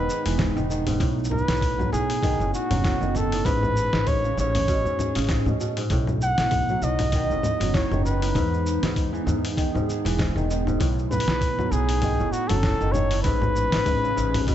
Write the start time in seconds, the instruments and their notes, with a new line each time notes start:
Already playing: kora G#2 D#3, ambient pad B3 D#4 G#4, flugelhorn B4
0.10 cabasa
0.26 upright bass E1, kora E3, open hi-hat, cabasa
0.38 kora G#2, kick, snare, open hi-hat, low conga, cabasa
0.56 upright bass E1, kora D#3, cabasa
0.70 kora D#3, cabasa
0.87 kora G#2, open hi-hat, low conga, cabasa
1.00 upright bass B1, kora A2, kick, open hi-hat, cabasa
1.18 cabasa
1.24 cabasa
1.27 flugelhorn B4, low conga, cabasa
1.38 cabasa
1.48 upright bass B1, kora A2, snare, open hi-hat
1.56 cabasa
1.61 kick, open hi-hat, cabasa
1.78 kora F#3, low conga, cabasa
1.92 upright bass B1, kora A2, flugelhorn G#4, cabasa
2.10 open hi-hat, cabasa
2.23 kora D#3, kick, open hi-hat, low conga, cabasa
2.40 upright bass F#1, kora A2, cabasa
2.54 flugelhorn F#4, cabasa
2.71 upright bass F#1, kora F#3, open hi-hat, low conga, cabasa
2.84 kora A2, kick, snare, open hi-hat, cabasa
3.01 upright bass F#1, kora D#3, cabasa
3.15 kora D#3, flugelhorn A4, low conga, cabasa
3.32 kora A2, open hi-hat, cabasa
3.45 upright bass A1, kora G#2, ambient pad C#4 G#4, flugelhorn B4, kick, open hi-hat, cabasa
3.63 low conga, cabasa
3.76 cabasa
3.93 upright bass A1, kora G#2, snare, cabasa
4.07 flugelhorn C#5, kick, open hi-hat, low conga, cabasa
4.24 kora C#3, cabasa
4.37 upright bass A1, kora G#2, flugelhorn C#5, cabasa
4.55 open hi-hat, low conga, cabasa
4.68 kora B2, kick, open hi-hat, cabasa
4.85 upright bass E2, kora G#2, cabasa
4.99 low conga, cabasa
5.15 upright bass A1, kora C#3, open hi-hat, cabasa
5.18 open hi-hat
5.22 open hi-hat
5.24 open hi-hat
5.27 snare, open hi-hat
5.29 kora G#2, kick, open hi-hat, cabasa
5.46 upright bass A2, kora B2, low conga, cabasa
5.60 kora B2, cabasa
5.77 kora G#2, open hi-hat, cabasa
5.90 upright bass B1, kora A2, ambient pad B3 D#4, kick, open hi-hat, cabasa
6.07 low conga, cabasa
6.21 flugelhorn F#5, cabasa
6.38 upright bass B1, kora A2, snare, open hi-hat, cabasa
6.51 kick, open hi-hat, low conga, cabasa
6.69 kora F#3, cabasa
6.82 upright bass B1, kora A2, flugelhorn D#5, cabasa
6.99 open hi-hat, low conga, cabasa
7.12 kora D#3, kick, open hi-hat, cabasa
7.30 upright bass F#1, kora A2, cabasa
7.43 low conga, cabasa
7.60 upright bass F#1, kora F#3, open hi-hat, cabasa
7.74 kora A2, flugelhorn C#5, kick, snare, open hi-hat, cabasa
7.91 upright bass F#1, kora D#3, low conga, cabasa
8.05 kora D#3, flugelhorn B4, cabasa
8.22 kora A2, open hi-hat, cabasa
8.35 upright bass E2, kora G#2, ambient pad G#4, kick, open hi-hat, low conga, cabasa
8.54 cabasa
8.66 cabasa
8.83 upright bass E2, kora G#2, snare, open hi-hat, low conga, cabasa
8.96 kick, open hi-hat, cabasa
9.13 kora E3, cabasa
9.26 upright bass E2, kora G#2, low conga, cabasa
9.45 open hi-hat, cabasa
9.57 kora D#3, kick, open hi-hat, cabasa
9.74 upright bass E1, kora G#2, low conga, cabasa
9.90 cabasa
10.05 upright bass E1, kora E3, open hi-hat, cabasa
10.19 kora G#2, kick, snare, open hi-hat, low conga, cabasa
10.36 upright bass E1, kora D#3, cabasa
10.50 kora D#3, cabasa
10.67 kora G#2, low conga, cabasa
10.80 upright bass B1, kora A2, ambient pad D#4, kick, open hi-hat, cabasa
10.99 cabasa
11.11 flugelhorn B4, low conga, cabasa
11.20 open hi-hat
11.27 upright bass B1, kora A2, snare, cabasa
11.41 kick, open hi-hat, cabasa
11.59 kora F#3, low conga, cabasa
11.71 upright bass B1, kora A2, flugelhorn G#4, cabasa
11.89 open hi-hat, cabasa
12.02 kora D#3, kick, open hi-hat, low conga, cabasa
12.19 upright bass F#1, kora A2, cabasa
12.32 flugelhorn F#4, cabasa
12.48 upright bass F#1, kora F#3, flugelhorn A4, open hi-hat, low conga, cabasa
12.63 kora A2, kick, snare, open hi-hat, cabasa
12.81 upright bass F#1, kora D#3, cabasa
12.92 kora D#3, flugelhorn C#5, low conga, cabasa
13.11 kora A2, open hi-hat, cabasa
13.23 upright bass A1, kora G#2, ambient pad C#4 G#4, flugelhorn B4, kick, open hi-hat, cabasa
13.42 low conga, cabasa
13.56 cabasa
13.72 upright bass A1, kora G#2, snare, open hi-hat, cabasa
13.86 kick, open hi-hat, low conga, cabasa
14.04 kora C#3, cabasa
14.16 upright bass A1, kora G#2, cabasa
14.34 open hi-hat, low conga, cabasa
14.47 kora B2, kick, open hi-hat, cabasa